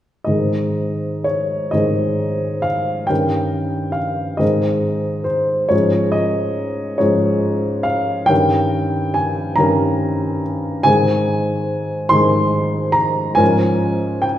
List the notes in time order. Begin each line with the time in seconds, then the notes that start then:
0.24 G#2 D#3 C4 G#4 D#5
1.24 C#5
1.71 G#2 D#3 C4 G#4 D#5
2.62 F5
3.07 G2 D#3 C#4 A#4 G5
3.92 F5
4.37 G#2 D#3 C4 G#4 D#5
5.24 C5
5.69 G#2 F3 C#4 G#4 C#5
6.12 D#5
6.98 G#2 F3 C#4 G#4 C#5
7.83 F5
8.26 G2 D#3 C#4 A#4 G5
9.14 G#5
9.56 G2 D#3 C#4 A#4 A#5
10.83 G#2 D#3 C4 G#4 G#5
12.09 G#2 D#3 C4 G#4 C6
12.92 A#5
13.35 G#2 F3 C#4 A#4 G#5
14.22 G5